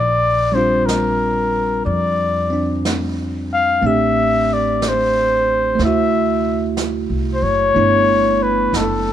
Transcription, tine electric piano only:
0.52 G3 C4 D4
0.57 F4
2.50 C4 D4
3.82 A3 C4 D4
3.87 G4
5.75 A3
5.79 C3 E4
5.87 F#4
7.75 A3 B3 D4 E4

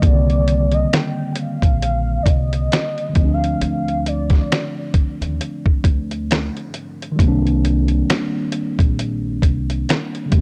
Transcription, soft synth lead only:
0.05 D5
0.74 D#5
0.94 G5
1.32 G5
1.39 F5
2.23 D5
2.29 D#5
3.34 F5
3.63 F5
4.08 D5

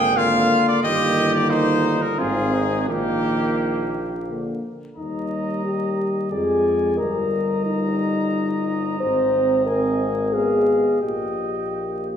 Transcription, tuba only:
Already playing: G#1
0.83 G1
2.18 G#1
2.88 A#1
4.97 D#2
6.32 F2
6.98 G1
9.00 G#1
11.01 A#1

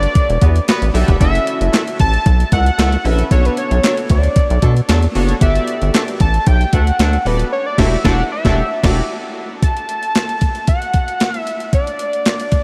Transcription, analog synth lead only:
Already playing: D5
1.21 E5
2.00 A5
2.53 F#5
3.06 B4
3.32 C#5
3.46 B4
3.58 C#5
3.85 C#5
4.11 D5
5.42 E5
6.21 A5
6.47 G5
6.73 F#5
7.26 B4
7.52 C#5
7.66 D5
7.79 E5
8.05 F#5
8.32 E5
9.63 A5
10.69 F#5
11.39 E5
11.74 D5

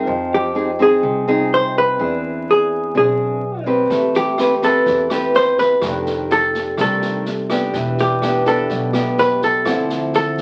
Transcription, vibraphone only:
0.04 F4 C5 D#5
0.09 G5
1.95 G#4 B4 E5
2.01 D5
3.64 G#4 B4 C5 D5
3.87 G4 B4
3.93 E5
5.79 G4 A4 D5
5.85 D#4
7.70 G4 B4
7.74 D5 E5
9.65 A4 C5 E5

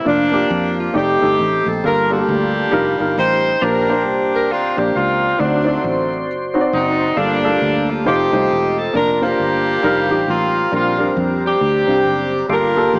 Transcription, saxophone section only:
0.07 F3 A#3 D4
0.79 F4
0.96 C4 D#4 G4
1.66 A4
1.84 D4 F4 A#4
2.11 A#3 D4 G4
3.18 D#4 G4 C5
3.62 D4 G4 A#4
4.33 A#4
4.51 C4 D4 F4
4.77 G4
4.95 C4 D4 F4
5.39 F#3 A3 D4
6.72 F#3 C4 D#4
7.17 F3 A#3 D4
7.88 F4
8.06 C4 D#4 G4
8.77 A4
8.96 D4 F4 A#4
9.22 A#3 D4 G4
10.29 A#3 C4 F4
10.74 C4 D4 F4
11.45 C4 D4 G4
12.50 D4 F4 A#4
12.94 A#3 D4 G4

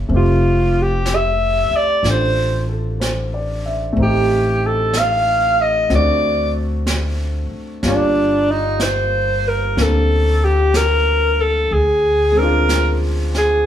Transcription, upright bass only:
0.09 F1
1.69 muted upright bass stroke
2.03 A1
3.97 A1
5.90 D2
7.50 muted upright bass stroke
7.83 G1
9.77 D2
11.71 D2

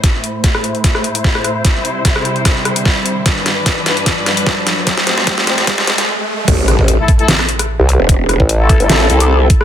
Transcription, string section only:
0.04 A2 A3 E4 C5
1.65 C3 G3
3.26 G2 D4 B4
4.87 A2 F3 C4 C5

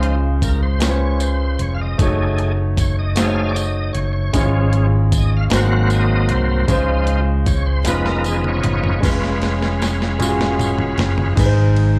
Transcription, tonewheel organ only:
Already playing: F3 D#4 C5
0.44 A#4
0.63 C5
0.83 C#5
1.22 C5
1.62 C#5
1.75 F5
1.81 D#5
2.00 A3 D#4 G#4
2.79 C#5
2.99 D#5
3.17 A3 D#4 G#4 F5
3.49 D5
3.55 D#5
3.93 C#5
4.13 C#5
4.34 F3 G#3 C#4
5.18 D#5
5.37 F5
5.54 F#3 A#3 C4 F#5
5.95 D#5
6.32 C5
6.48 C5
6.68 F3 D#4 C5
7.47 C#5
7.66 C5
7.86 F3 B3 D#4 B4
8.08 A#4
8.28 G#4
8.48 C#5
9.04 G#3 C#4 F4 B4

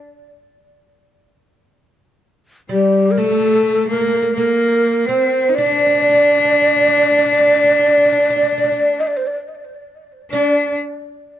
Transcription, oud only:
2.69 G3
3.17 A3
3.24 A3
3.31 A3
3.40 A3
3.48 A3
3.55 A3
3.63 A3
3.70 A3
3.76 A3
3.85 A3
3.93 A3
4.01 A3
4.07 A3
4.15 A3
4.22 A3
4.37 A#3
5.09 C4
5.58 D4
5.66 D4
5.72 D4
5.79 D4
5.87 D4
5.95 D4
6.02 D4
6.09 D4
6.14 D4
6.31 D4
6.40 D4
6.45 D4
6.52 D4
6.62 D4
6.68 D4
6.76 D4
6.81 D4
6.88 D4
6.98 D4
7.03 D4
7.11 D4
7.18 D4
7.26 D4
7.33 D4
7.40 D4
7.47 D4
7.57 D4
7.64 D4
7.71 D4
7.79 D4
7.88 D4
7.98 D4
8.06 D4
8.12 D4
8.20 D4
8.30 D4
8.36 D4
8.43 D4
8.52 D4
8.58 D4
8.64 D4
8.72 D4
10.33 D4

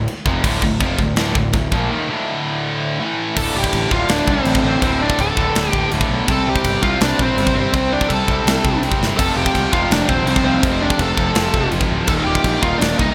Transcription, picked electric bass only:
0.26 F1
0.44 D1
0.62 D1
0.81 F1
0.99 D1
1.16 D1
1.35 D1
1.54 D1
1.72 A#1
3.37 D1
3.55 D1
3.73 A1
3.91 D1
4.08 D1
4.27 C2
4.45 A1
4.63 A1
4.82 D1
5.19 D1
5.37 D1
5.56 D1
5.74 D1
5.92 D1
6.09 B1
6.28 C2
6.47 C2
6.65 G1
6.83 C2
7.01 C2
7.20 A#1
7.37 G1
7.55 G1
7.73 C2
8.11 C2
8.28 C2
8.46 C2
8.64 C2
8.81 C2
9.00 G1
9.20 F1
9.36 F1
9.55 C2
9.73 F1
9.91 F1
10.09 D#1
10.25 C2
10.44 C2
10.63 F1
10.99 F1
11.18 F1
11.36 F1
11.54 F1
11.72 F1
11.90 D1
12.08 D#1
12.25 D#1
12.44 A#1
12.63 D#1
12.81 D#1
12.99 C2

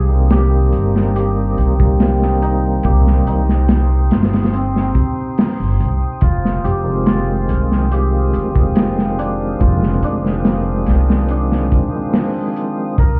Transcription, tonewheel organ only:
0.09 D#3 G3 A#3
0.14 C4
1.77 D#3 G3 A#3
1.84 C4
6.84 D#3 F3 G#3
6.90 C4
8.53 D#3 F3 G#3
8.59 C4
10.22 D#3 F3
10.26 G#3 C4
11.91 D#3 F3 G#3
11.96 C4

